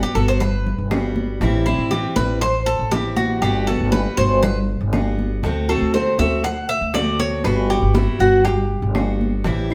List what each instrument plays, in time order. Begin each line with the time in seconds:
Already playing: steel-string acoustic guitar G3 B3 F#4
0.03 cuban tres G4
0.15 upright bass G1, steel-string acoustic guitar B3 F#4, cuban tres A4, high conga
0.28 cuban tres C5
0.40 cuban tres B4, muted steel-string acoustic guitar stroke, high bongo, high conga, low conga, claves
0.66 high conga, low conga
0.78 upright bass G1
0.91 steel-string acoustic guitar G3 B3 F#4, high bongo, low bongo, high conga, claves
1.16 high conga
1.41 upright bass A1, steel-string acoustic guitar E3 G3 C4 E4, high bongo, high conga
1.66 steel-string acoustic guitar G3 C4 E4, cuban tres E4, high bongo, high conga, claves
1.79 upright bass A1
1.91 steel-string acoustic guitar E3 G3 C4 E4, cuban tres G4, high bongo, high conga
2.16 upright bass A1, steel-string acoustic guitar G3 C4 E4, cuban tres B4, high bongo, high conga
2.41 cuban tres C5, muted steel-string acoustic guitar stroke, high bongo, high conga, claves
2.66 cuban tres A4, high conga
2.79 upright bass A1
2.91 steel-string acoustic guitar E3 G3 C4 E4, cuban tres G4, high bongo, low bongo, high conga
3.17 cuban tres F#4, high bongo, high conga
3.42 upright bass G1, steel-string acoustic guitar G3 B3 F#4, cuban tres G4, high bongo, high conga, claves
3.67 steel-string acoustic guitar B3 F#4, cuban tres A4, high conga
3.80 upright bass G1
3.92 steel-string acoustic guitar G3 B3 F#4, cuban tres B4, high bongo, high conga
4.17 upright bass G1, steel-string acoustic guitar B3 F#4, cuban tres C5, high conga
4.43 cuban tres B4, muted steel-string acoustic guitar stroke, high bongo, high conga, low conga, claves
4.69 high conga
4.81 upright bass G1
4.93 steel-string acoustic guitar G3 B3 F#4, high bongo, low bongo, high conga, claves
5.19 high conga
5.43 upright bass D2, steel-string acoustic guitar D3 A3 C4 F#4, high bongo
5.69 steel-string acoustic guitar A3 C4 F#4, cuban tres A4, high bongo, high conga, claves
5.81 upright bass D2
5.94 steel-string acoustic guitar D3 A3 C4 F#4, cuban tres C5, high bongo, high conga
6.18 upright bass D2, steel-string acoustic guitar A3 C4 F#4, cuban tres E5, high bongo, high conga
6.44 cuban tres F#5, muted steel-string acoustic guitar stroke, high bongo, high conga, claves
6.69 cuban tres E5, high conga
6.81 upright bass D2
6.94 steel-string acoustic guitar D3 A3 C4 F#4, cuban tres D5, high bongo, low bongo, high conga
7.19 cuban tres C#5, high bongo, high conga
7.44 upright bass G1, steel-string acoustic guitar G3 B3 F#4, cuban tres B4, high bongo, high conga, claves
7.70 steel-string acoustic guitar B3 F#4, cuban tres G4, high conga
7.82 upright bass G1
7.94 steel-string acoustic guitar G3 B3 F#4, cuban tres E4, high bongo, high conga
8.19 upright bass G1, steel-string acoustic guitar B3 F#4, cuban tres F#4, high conga
8.45 cuban tres G4, muted steel-string acoustic guitar stroke, high bongo, high conga, low conga, claves
8.70 high conga
8.82 upright bass G1
8.95 steel-string acoustic guitar G3 B3 F#4, high bongo, low bongo, high conga, claves
9.21 high conga
9.44 upright bass A1, steel-string acoustic guitar E3 G3 C4 E4, high bongo, high conga
9.70 steel-string acoustic guitar E4, high bongo, high conga